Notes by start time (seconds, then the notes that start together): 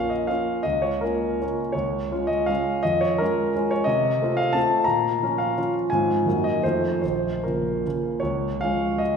Already playing: A#3 C#4 F4 F5
0.10 D#5
0.27 A#3 C#4 F4 F5
0.63 C#2 D#5
0.82 C#5
1.01 A#3 C#4 F4 A#4
1.41 A#3 C#4 F4
1.72 C#2 C#5
2.12 G#3 C#4 F4
2.27 D#5
2.46 G#3 C#4 F4 F5
2.83 F2 D#5
3.01 C#5
3.18 G#3 C#4 F4 A#4
3.56 G#3 C#4 F4
3.71 C#5
3.84 C3 D#5
4.22 A3 C4 F4
4.37 F5
4.53 A3 C4 F4 A5
4.84 A#2 A#5
5.23 F3 C#4 F4
5.38 F5
5.58 F3 C#4 F4
5.90 G#2 F3 C4 F4 G#5
6.26 F#2 F#3 A#3 D#4
6.44 D#5
6.63 F2 D#3 A3 F4 C5
7.02 A#1 C5
7.44 C#3 A#3 F4 A#4
7.86 C#3 A#3 F4
8.20 C#2 C#5
8.61 F3 G#3 C#4 F5
8.98 D#5